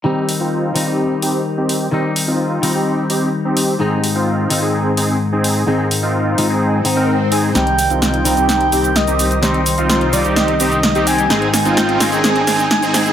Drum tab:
HH |--o---o---o---o-|--o---o---o---o-|--o---o---o---o-|--o---o---o---o-|
SH |----------------|----------------|----------------|----------------|
SD |----------------|----------------|----------------|----------------|

HH |xxoxxxoxxxoxxxox|xxoxxxoxxxoxxxox|xxoxxxoxxxoxxxox|
SH |x-xxx-xxx-xxxxxx|x-xxx-xxx-xxxxxx|x-xxx-xxx-xxxxxx|
SD |o---o---o---o---|o---o---o---o---|o-o-o-o-o-o-o-o-|